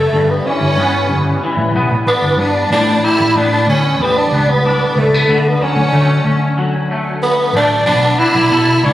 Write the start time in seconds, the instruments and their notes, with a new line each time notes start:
Already playing: tenor saxophone A3, clean electric guitar B3 D4 A4 C#5
0.13 fingered electric bass G1, clean electric guitar G2
0.30 tenor saxophone B3
0.46 clean electric guitar E3, tenor saxophone C#4
0.61 fingered electric bass G1
0.77 fingered electric bass G2, clean electric guitar B3
1.08 fingered electric bass G1
1.43 clean electric guitar E3
1.57 fingered electric bass A1
1.74 fingered electric bass B1, clean electric guitar B3
1.89 fingered electric bass A1
2.06 tenor saxophone B3, clean electric guitar D4, muted fingered electric bass stroke
2.22 fingered electric bass G1
2.37 fingered electric bass G2, clean electric guitar B3, tenor saxophone D4
2.70 fingered electric bass A1, clean electric guitar A2, tenor saxophone D4
3.04 clean electric guitar G3, tenor saxophone E4
3.20 fingered electric bass A1
3.35 fingered electric bass A2, clean electric guitar B3, tenor saxophone D4
3.67 fingered electric bass D2, tenor saxophone C#4
3.99 fingered electric bass E2, clean electric guitar G3, tenor saxophone B3
4.17 tenor saxophone D4
4.31 fingered electric bass C#2, clean electric guitar B3
4.49 tenor saxophone B3
4.66 clean electric guitar D4
4.95 fingered electric bass C#2, clean electric guitar A3, tenor saxophone A3
5.14 clean electric guitar B3
5.28 fingered electric bass D2, clean electric guitar D3
5.48 tenor saxophone B3
5.61 clean electric guitar F#3, tenor saxophone C#4
5.76 fingered electric bass D2
5.92 fingered electric bass D3, clean electric guitar A3
6.24 fingered electric bass D2, clean electric guitar C#4
6.58 clean electric guitar F#3
6.91 clean electric guitar A3
7.23 tenor saxophone B3
7.53 fingered electric bass A1, clean electric guitar A3, tenor saxophone D4
7.86 fingered electric bass B1, clean electric guitar B3, tenor saxophone D4
8.19 clean electric guitar D4, tenor saxophone E4
8.35 fingered electric bass B1
8.51 fingered electric bass B2, clean electric guitar A4
8.83 fingered electric bass C#2, tenor saxophone D4, clean electric guitar C#5